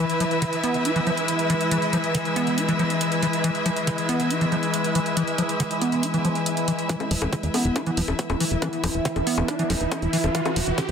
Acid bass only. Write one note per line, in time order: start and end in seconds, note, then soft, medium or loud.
0.20 0.25 F3 medium
0.42 0.44 D3 loud
0.63 0.87 B3 medium
0.85 0.91 E4 medium
0.96 1.00 E3 medium
1.07 1.11 F3 medium
1.50 1.54 E3 medium
1.71 1.78 E3 medium
1.93 1.97 F3 medium
2.15 2.17 D3 loud
2.36 2.59 B3 medium
2.58 2.64 E4 medium
2.69 2.73 E3 medium
2.79 2.84 F3 medium
3.22 3.27 E3 medium
3.44 3.50 E3 medium
3.66 3.70 F3 medium
3.87 3.90 D3 loud
4.09 4.32 B3 medium
4.30 4.37 E4 medium
4.41 4.45 E3 medium
4.52 4.56 F3 medium
4.95 4.99 E3 medium
5.17 5.23 E3 medium
5.38 5.43 F3 medium
5.60 5.62 D3 loud
5.82 6.05 B3 medium
6.03 6.09 E4 medium
6.14 6.18 E3 medium
6.25 6.29 F3 medium
6.68 6.72 E3 medium
6.89 6.96 E3 medium
7.11 7.15 F3 medium
7.33 7.35 D3 loud
7.54 7.77 B3 medium
7.76 7.82 E4 medium
7.87 7.91 E3 medium
7.97 8.02 F3 medium
8.40 8.45 E3 medium
8.62 8.68 E3 medium
8.84 8.88 F3 medium
9.05 9.08 D3 loud
9.27 9.50 B3 medium
9.48 9.55 E4 medium
9.59 9.63 E3 medium
9.70 9.74 F3 medium
10.13 10.17 E3 medium
10.35 10.41 E3 medium
10.56 10.61 F3 medium
10.78 10.80 D3 loud